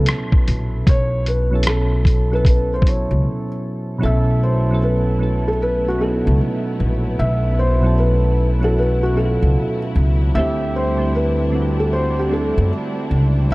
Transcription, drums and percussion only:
0.06 cross-stick loud
0.06 closed hi-hat medium
0.32 kick medium
0.48 closed hi-hat medium
0.87 kick loud
0.87 closed hi-hat medium
1.26 closed hi-hat medium
1.63 closed hi-hat medium
1.67 cross-stick loud
2.05 kick medium
2.05 closed hi-hat medium
2.45 kick medium
2.45 closed hi-hat medium
2.82 kick medium
2.87 closed hi-hat medium

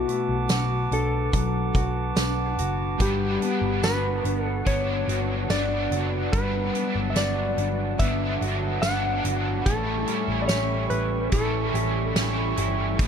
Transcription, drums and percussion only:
0.09 closed hi-hat soft
0.49 snare loud
0.49 closed hi-hat medium
0.49 tambourine medium
0.92 closed hi-hat soft
1.33 kick medium
1.33 closed hi-hat medium
1.75 kick medium
1.75 closed hi-hat soft
2.17 snare loud
2.17 closed hi-hat medium
2.17 tambourine medium
2.59 closed hi-hat medium
3.00 kick loud
3.00 closed hi-hat medium
3.42 closed hi-hat soft
3.83 snare loud
3.83 closed hi-hat medium
3.83 tambourine medium
4.25 closed hi-hat soft
4.66 kick medium
4.66 closed hi-hat medium
5.09 closed hi-hat soft
5.50 snare loud
5.50 closed hi-hat medium
5.50 tambourine medium
5.92 closed hi-hat medium
6.33 kick loud
6.33 closed hi-hat medium
6.75 closed hi-hat soft
7.16 snare loud
7.16 closed hi-hat medium
7.16 tambourine medium
7.58 closed hi-hat soft
7.99 kick medium
7.99 closed hi-hat medium
8.42 closed hi-hat soft
8.83 snare loud
8.83 closed hi-hat medium
8.83 tambourine medium
9.25 closed hi-hat medium
9.66 kick loud
9.66 closed hi-hat medium
10.07 closed hi-hat soft
10.48 snare loud
10.48 closed hi-hat medium
10.48 tambourine medium
10.90 closed hi-hat soft
11.32 kick medium
11.32 closed hi-hat medium
11.75 closed hi-hat soft
12.16 snare loud
12.16 closed hi-hat medium
12.16 tambourine medium
12.57 closed hi-hat medium
12.99 kick loud
12.99 closed hi-hat medium

